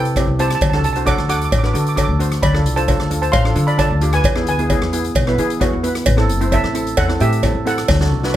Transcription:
Already playing: C3 B4 G5
0.05 closed hi-hat
0.16 C4 E4 G4, kick, cross-stick, closed hi-hat, cowbell
0.27 C2
0.39 C4 E4 G4 C5 A5, closed hi-hat
0.51 cross-stick, closed hi-hat
0.55 A5
0.61 D2, kick, closed hi-hat, cowbell
0.70 D4 A5, cross-stick
0.74 F#4 A4 A5
0.84 C2 A5, closed hi-hat
0.93 D4 F#4 C5 A5, closed hi-hat
1.05 D4 F#4 A4 F#5 D6, kick, closed hi-hat, cowbell
1.18 D2, cross-stick
1.29 D4 F#4 A4 F#5 D6, closed hi-hat
1.37 D6
1.42 D6, closed hi-hat
1.51 A1 D6, kick, closed hi-hat, cowbell
1.59 D6
1.63 D4 F#4 B4 D6, cross-stick
1.73 D3 D4 F#4 A4 D6, closed hi-hat
1.81 D6
1.87 D6, closed hi-hat
1.96 D4 F#4 A4 D6, kick, cross-stick, closed hi-hat, cowbell
2.03 D6
2.09 D2
2.19 D4 F#4 C5, closed hi-hat
2.32 cross-stick, closed hi-hat
2.43 D2 D5 B5, kick, closed hi-hat, cowbell
2.53 D4 F4 A4, cross-stick
2.65 C2, closed hi-hat
2.76 D4 F4 A4 C5 A5, closed hi-hat
2.88 D4 F4 A4, kick, closed hi-hat, cowbell
3.00 D2, cross-stick
3.11 D4 F4 A4, closed hi-hat
3.22 C5 A5, closed hi-hat
3.32 A1 F5 C6, kick, closed hi-hat, cowbell
3.45 D4 F4 A4, cross-stick
3.55 D3 D4 F4 A4, closed hi-hat
3.67 D5 B5, closed hi-hat
3.77 D4 F4 A4 D5 A5, kick, cross-stick, closed hi-hat, cowbell
3.90 D2
4.01 D4 F4 G4, closed hi-hat
4.13 B4 G#5, cross-stick, closed hi-hat
4.24 E2, kick, closed hi-hat, cowbell
4.36 B3 E4 G#4, cross-stick
4.47 D2 B4 G#5, closed hi-hat
4.59 B3 E4 G#4, closed hi-hat
4.70 B3 E4 G#4, kick, closed hi-hat, cowbell
4.81 E2, cross-stick
4.93 B3 E4 G#4, closed hi-hat
5.04 closed hi-hat
5.15 B1, kick, closed hi-hat, cowbell
5.27 B3 E4 B4, cross-stick
5.38 E3 B3 E4 G#4, closed hi-hat
5.50 closed hi-hat
5.60 B3 E4 F#4, kick, cross-stick, closed hi-hat, cowbell
5.73 E2
5.83 B3 E4 B4, closed hi-hat
5.95 cross-stick, closed hi-hat
6.06 A1, kick, closed hi-hat, cowbell
6.17 C4 E4 A4, cross-stick
6.29 F#1, closed hi-hat
6.41 C4 E4 C5, closed hi-hat
6.52 C4 E4 A4 E5, kick, closed hi-hat, cowbell
6.64 A1, cross-stick
6.74 C4 E4 A4, closed hi-hat
6.87 closed hi-hat
6.97 E2 A4 F#5, kick, closed hi-hat, cowbell
7.09 C4 E4 A4, cross-stick
7.20 A2 C4 E4 G4 A4 E5, closed hi-hat
7.33 closed hi-hat
7.43 C4 E4 A4, kick, cross-stick, closed hi-hat, cowbell
7.55 A1
7.65 C4 E4 A4 F#5, closed hi-hat
7.78 cross-stick, closed hi-hat
7.88 D2, kick, snare, cowbell
8.00 D4 F#4 A4, snare
8.12 C2
8.23 D4 F#4 B4, snare

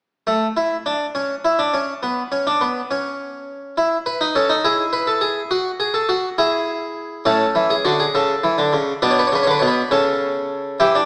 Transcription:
0.27 A3
0.57 E4
0.86 D4
1.15 C#4
1.45 E4
1.59 D4
1.74 C#4
2.03 B3
2.32 C#4
2.47 D4
2.61 B3
2.91 C#4
3.78 E4
4.06 B4
4.21 D#4
4.35 C#4 A4
4.49 D#4
4.65 E4 G#4
4.93 B4
5.07 A4
5.21 G#4
5.51 F#4
5.80 G#4
5.94 A4
6.09 F#4
6.38 E4 G#4
7.25 A2 C#4 A4
7.55 E3
7.70 G#4
7.85 D3 F#4
8.00 G#4
8.15 C#3 A4
8.44 E3
8.58 D3
8.73 C#3
9.02 B2 D4 B4
9.11 C#5
9.19 B4
9.27 C#5
9.32 C#3 B4
9.43 D3 C#5
9.51 B4
9.59 B2 C#5
9.68 B4
9.91 C#3 C#4 A4
10.80 E3 E4 G4
10.95 D4

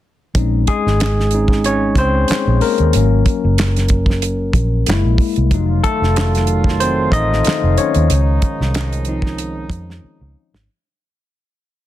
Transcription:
0.35 A#1 G#3 C4 C#4 D#4, kick, closed hi-hat
0.67 G#3 G#4, kick, closed hi-hat
0.86 G#1, snare
1.00 snare, clap, closed hi-hat
1.20 snare
1.31 G#3 C4, closed hi-hat
1.35 C#4 D#4
1.48 kick, snare
1.64 C#4 C#5, closed hi-hat
1.95 C#2 C5, kick, closed hi-hat
2.00 C4
2.28 muted fingered electric bass stroke, snare, clap, closed hi-hat
2.47 A#1
2.61 A#3 A#4, open hi-hat
2.78 D#2, closed hi-hat
2.93 G#1 F#3 A#3 C#4, closed hi-hat
3.26 kick, closed hi-hat
3.44 F#1
3.58 snare, clap, closed hi-hat
3.76 snare, closed hi-hat
3.88 kick, closed hi-hat
4.06 kick
4.10 snare
4.22 closed hi-hat
4.53 A#1, kick, closed hi-hat
4.86 F#1 G#3 A#3 E4, snare, clap, closed hi-hat
5.05 A#1
5.18 kick, open hi-hat
5.36 C2, closed hi-hat
5.51 F1 D#3 F#3 A3 D#4 F4, kick, closed hi-hat
5.84 A3 A4, kick, closed hi-hat
6.01 F1, snare
6.16 snare, clap, closed hi-hat
6.35 snare, closed hi-hat
6.47 closed hi-hat
6.64 kick, snare
6.80 C4 C5, closed hi-hat
7.12 A1 D#4 D#5, kick, closed hi-hat
7.33 snare
7.44 snare, clap, closed hi-hat
7.63 F1
7.77 C#4 C#5, closed hi-hat
7.94 D#2, closed hi-hat
8.08 C#2 D#3 F3 G#3 D#4, closed hi-hat
8.42 kick, closed hi-hat
8.60 C2, snare
8.74 snare, clap, closed hi-hat
8.93 closed hi-hat
9.05 F3 C4, closed hi-hat
9.09 D#4
9.22 kick, snare
9.38 closed hi-hat
9.70 F2, kick, closed hi-hat
9.90 snare
10.21 C#2
10.53 G#1, snare

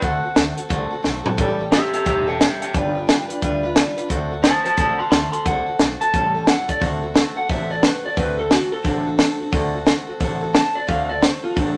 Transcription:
0.01 D2 D3 A3 C4 F#4 A4 F#5, kick, closed hi-hat
0.23 C4 F#4 A4, muted upright bass stroke
0.35 D2 A3 C4 F#4 A4, snare, closed hi-hat
0.56 C4 F#4 A4, muted upright bass stroke, closed hi-hat
0.69 C2 D3 A3 C4 F#4 A4, kick, closed hi-hat
0.90 C4 F#4 A4, muted upright bass stroke
1.03 B1 A3 C4 F#4 A4, snare
1.24 C4 F#4 A4, muted upright bass stroke, floor tom
1.37 A1 A2 E3 G3 C#4 G4 A4, kick, closed hi-hat
1.59 G3 C#4 G4 A4
1.71 G3 C#4 G4 A4 E5, snare, closed hi-hat
1.93 G3 C#4 G4 A4 E5, muted upright bass stroke, closed hi-hat
2.04 E1 A2 E3 G3 C#4 G4 A4 E5, kick, closed hi-hat
2.27 G3 C#4 G4 A4 E5 G5
2.39 G3 C#4 G4 A4 E5 G5, snare, closed hi-hat
2.60 G3 C#4 G4 A4 E5 G5, muted upright bass stroke, closed hi-hat
2.73 G1 G3 D4 F4 B4 G5, kick, closed hi-hat
2.95 D4 F4 B4
3.07 G3 D4 F4 B4, snare, closed hi-hat
3.28 D4 F4 B4, muted upright bass stroke, closed hi-hat
3.41 D2 G3 D4 F4 B4, kick, closed hi-hat
3.63 D4 F4 B4
3.75 G3 D4 F4 B4, snare, closed hi-hat
3.97 D4 F4 B4, muted upright bass stroke, closed hi-hat
4.08 D2 D3 A3 C4 F#4 A4, kick, closed hi-hat
4.31 C4 F#4 A4
4.42 A3 C4 F#4 A4 C5 A5, snare, closed hi-hat
4.64 C4 F#4 A4 C5 A5, muted upright bass stroke, closed hi-hat
4.76 A1 D3 A3 C4 F#4 A4 C5 A5, kick, closed hi-hat
4.98 C4 F#4 A4 A5 C6, muted upright bass stroke
5.10 D2 A3 C4 F#4 A4 A5 C6, snare, closed hi-hat
5.32 C4 F#4 A4 A5 C6, muted upright bass stroke, closed hi-hat
5.45 C2 D3 A3 C4 F#4 A4 F#5, kick, closed hi-hat
5.66 C4 F#4 A4, muted upright bass stroke
5.79 B1 A3 C4 F#4 A4, snare, closed hi-hat
6.01 C4 F#4 A4 A5, muted upright bass stroke, closed hi-hat
6.14 A1 A2 E3 G3 C#4 E4 A4, kick, closed hi-hat
6.34 G3 C#4 E4 A4
6.47 G3 C#4 E4 A4 F#5, snare, closed hi-hat
6.68 G3 C#4 E4 A4 D5, muted upright bass stroke, kick, closed hi-hat
6.80 D2 D3 A3 C4 F#4 A4, kick, open hi-hat
7.02 C4 F#4 A4
7.14 A3 C4 F#4 A4, snare, open hi-hat
7.35 C4 F#4 A4 F#5, muted upright bass stroke
7.49 A1 D3 A3 C4 F#4 A4 E5, kick, open hi-hat
7.70 C4 F#4 A4 D5
7.83 A3 C4 F#4 A4 B4, snare, open hi-hat
8.04 C4 F#4 A4 D5, muted upright bass stroke
8.16 D2 D3 A3 C4 F#4 A4 B4, kick, open hi-hat
8.37 C4 F#4 A4
8.50 A3 C4 F#4 A4, snare, open hi-hat
8.72 C4 F#4 A4, muted upright bass stroke
8.84 A1 D3 A3 C4 D4 F#4 A4, kick, open hi-hat
9.05 C4 F#4 A4
9.17 A3 C4 F#4 A4, snare, open hi-hat
9.38 C4 F#4 A4, muted upright bass stroke
9.52 D2 D3 A3 C4 F#4 A4, kick, open hi-hat
9.73 C4 F#4 A4
9.86 A3 C4 F#4 A4, snare, open hi-hat
10.07 C4 F#4 A4, muted upright bass stroke
10.20 A1 D3 A3 C4 F#4 A4, kick, open hi-hat
10.41 C4 F#4 A4
10.54 C4 F#4 A4 A5, snare, open hi-hat
10.74 C4 F#4 A4 D5, muted upright bass stroke
10.87 D2 D3 A3 C4 F#4 A4 F5, kick, open hi-hat
11.08 C4 F#4 A4 D5
11.21 A3 F#4 A4 C5, snare, open hi-hat
11.43 C4 F4 F#4 A4, muted upright bass stroke
11.56 A1 D3 A3 C4 D4 F#4 A4, kick, open hi-hat

